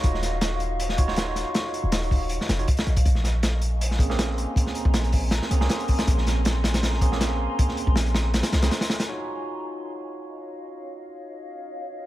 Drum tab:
HH |x-x-x-x-x-x-x-x-|x-x-xxo-x-xxxxxx|x-x-x-x-x-x-x-x-|x-x-xxo-x-x-xxox|
SD |-oo-o----o-oo-o-|o---o----oo--o--|-oo-o----o-oo---|-o--o---oo-oo--o|
BD |o---------o-----|------o-----o--o|o---------o-----|o--o--o-------o-|

HH |x-x-x-xxx-x-x---|x-x-xxx-xxxxxxxx|----------------|----------------|
SD |-oo-o-oooo-oo---|-o--o-o-oooooooo|----------------|----------------|
BD |o---------o-----|o--o------------|----------------|----------------|